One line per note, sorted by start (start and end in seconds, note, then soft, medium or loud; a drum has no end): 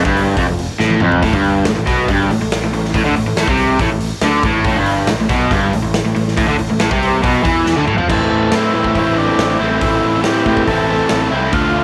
0.05 0.35 G1 loud
0.05 0.37 G2 loud
0.05 kick loud
0.17 open hi-hat medium
0.37 0.47 F1 loud
0.37 0.48 F2 loud
0.37 kick medium
0.37 open hi-hat medium
0.48 0.68 F1 medium
0.48 0.65 F2 medium
0.59 open hi-hat medium
0.80 1.00 A1 medium
0.80 1.01 A2 loud
0.80 snare medium
0.90 high tom medium
1.00 1.21 F1 medium
1.00 1.22 F2 loud
1.00 mid tom medium
1.12 floor tom medium
1.22 1.32 A1 medium
1.22 1.33 A2 loud
1.22 kick medium
1.22 open hi-hat medium
1.32 1.63 G1 loud
1.32 1.64 G2 loud
1.32 kick medium
1.44 open hi-hat medium
1.65 1.76 A1 medium
1.65 1.75 A2 medium
1.65 snare loud
1.65 open hi-hat medium
1.76 1.86 A1 medium
1.76 1.86 A2 medium
1.87 2.07 B1 medium
1.87 2.08 B2 medium
1.87 kick loud
1.87 snare soft
1.87 open hi-hat medium
2.08 2.29 G1 loud
2.08 2.29 G2 loud
2.08 kick medium
2.08 open hi-hat medium
2.30 2.40 A1 medium
2.30 2.40 A2 medium
2.30 open hi-hat medium
2.40 2.60 A1 medium
2.40 2.58 A2 medium
2.52 snare loud
2.52 open hi-hat medium
2.62 2.72 A1 medium
2.62 2.73 A2 medium
2.73 2.93 A1 medium
2.73 2.90 A2 medium
2.73 open hi-hat medium
2.85 snare soft
2.94 3.04 A1 medium
2.94 3.05 A2 loud
2.94 kick loud
2.94 open hi-hat medium
3.05 3.14 D2 medium
3.05 3.15 D3 medium
3.14 3.25 A1 medium
3.14 3.26 A2 medium
3.14 open hi-hat medium
3.26 3.35 A1 medium
3.26 3.37 A2 medium
3.36 3.46 A1 medium
3.36 3.48 A2 loud
3.36 snare loud
3.36 open hi-hat medium
3.47 3.78 C2 medium
3.47 3.80 C3 loud
3.47 kick loud
3.57 open hi-hat medium
3.79 3.90 A1 loud
3.79 3.91 A2 loud
3.79 kick loud
3.79 open hi-hat medium
3.90 4.11 A1 medium
3.90 4.08 A2 medium
4.00 open hi-hat medium
4.22 4.42 D2 loud
4.22 4.44 D3 medium
4.22 snare loud
4.22 open hi-hat medium
4.43 4.64 A1 medium
4.43 4.65 A2 loud
4.43 kick loud
4.43 open hi-hat medium
4.64 4.75 A1 loud
4.64 4.76 A2 medium
4.64 kick loud
4.64 open hi-hat medium
4.76 5.06 G1 loud
4.76 5.08 G2 medium
4.86 open hi-hat medium
5.07 5.17 A1 medium
5.07 5.19 A2 medium
5.07 snare loud
5.07 open hi-hat medium
5.18 5.28 A1 medium
5.18 5.30 A2 medium
5.29 5.50 B1 medium
5.29 5.51 B2 medium
5.29 kick loud
5.29 snare soft
5.29 open hi-hat medium
5.51 5.71 G1 loud
5.51 5.72 G2 loud
5.51 kick loud
5.51 open hi-hat medium
5.73 5.83 A1 medium
5.73 5.82 A2 medium
5.73 open hi-hat medium
5.83 6.04 A1 medium
5.83 6.00 A2 medium
5.94 snare loud
5.94 open hi-hat medium
6.04 6.15 A1 medium
6.04 6.14 A2 medium
6.15 6.36 A1 medium
6.15 6.33 A2 medium
6.15 open hi-hat medium
6.28 snare soft
6.37 6.47 A1 loud
6.37 6.47 A2 loud
6.37 kick loud
6.37 open hi-hat medium
6.48 6.59 D2 loud
6.48 6.58 D3 medium
6.59 6.69 A1 medium
6.59 6.69 A2 medium
6.59 open hi-hat medium
6.70 6.80 A1 medium
6.70 6.79 A2 medium
6.80 6.91 A1 medium
6.80 6.90 A2 loud
6.80 snare loud
6.80 open hi-hat medium
6.91 7.21 C2 loud
6.91 7.23 C3 loud
6.91 kick loud
7.03 open hi-hat medium
7.23 7.43 B1 loud
7.23 7.43 B2 loud
7.23 kick loud
7.23 open hi-hat medium
7.44 7.75 E2 medium
7.44 7.76 E3 medium
7.44 kick loud
7.44 open hi-hat medium
7.66 snare medium
7.77 7.87 D2 medium
7.77 7.87 D3 medium
7.87 7.98 A1 medium
7.87 7.98 A2 medium
7.87 mid tom medium
7.98 8.08 F2 loud
7.98 8.08 F3 loud
7.98 floor tom medium
8.09 8.26 A1 medium
8.09 8.95 A2 medium
8.09 8.51 E3 medium
8.09 8.53 A3 medium
8.09 8.54 C4 medium
8.09 8.55 E4 loud
8.09 8.55 A4 loud
8.09 kick loud
8.09 crash loud
8.32 8.49 A1 medium
8.51 8.70 A2 medium
8.51 8.96 E3 medium
8.51 8.77 A3 medium
8.51 8.75 C4 medium
8.51 8.96 E4 medium
8.51 snare loud
8.51 open hi-hat medium
8.55 8.74 E4 medium
8.74 8.91 A2 medium
8.74 8.98 A3 medium
8.74 8.98 C4 medium
8.74 8.98 E4 medium
8.84 kick medium
8.95 9.29 A1 loud
8.95 9.38 A2 medium
8.95 9.39 E3 medium
8.95 9.20 A3 medium
8.95 9.17 C4 medium
8.95 9.18 E4 medium
8.95 kick medium
8.95 open hi-hat soft
8.99 9.15 E4 medium
9.16 9.60 C4 medium
9.16 9.57 D4 medium
9.16 9.58 E4 medium
9.20 9.63 A3 medium
9.39 9.55 A1 medium
9.39 snare loud
9.39 open hi-hat medium
9.59 9.77 A1 medium
9.59 9.83 C4 medium
9.59 9.84 E4 medium
9.64 9.83 A3 medium
9.81 9.99 A1 medium
9.81 10.45 A2 medium
9.81 10.24 E3 medium
9.81 10.25 A3 medium
9.81 10.26 C4 medium
9.81 10.21 E4 medium
9.81 kick loud
9.81 open hi-hat medium
9.85 10.28 E4 medium
10.04 10.21 A1 medium
10.24 10.42 A2 medium
10.24 10.67 E3 medium
10.24 10.50 A3 medium
10.24 10.47 C4 medium
10.24 10.64 G4 medium
10.24 snare loud
10.24 open hi-hat soft
10.29 10.45 E4 medium
10.46 10.63 A2 medium
10.46 10.69 C4 medium
10.46 10.70 E4 medium
10.46 kick medium
10.50 10.69 A3 medium
10.57 kick medium
10.67 11.02 A1 loud
10.67 11.10 A2 medium
10.67 11.11 E3 medium
10.67 10.92 A3 medium
10.67 10.89 C4 medium
10.67 11.28 A4 loud
10.67 kick medium
10.67 open hi-hat medium
10.71 10.87 E4 medium
10.88 11.32 C4 medium
10.88 11.30 E4 medium
10.92 11.35 A3 medium
11.09 11.28 A1 medium
11.09 snare loud
11.09 open hi-hat medium
11.31 11.49 C2 medium
11.31 11.53 C4 medium
11.31 11.52 E4 medium
11.36 11.52 A3 medium
11.51 11.70 D2 medium
11.51 11.84 D3 medium
11.51 11.84 A3 loud
11.51 11.84 D4 medium
11.51 11.84 F4 medium
11.51 kick loud
11.51 open hi-hat medium
11.55 11.84 F4 medium
11.75 11.84 D2 medium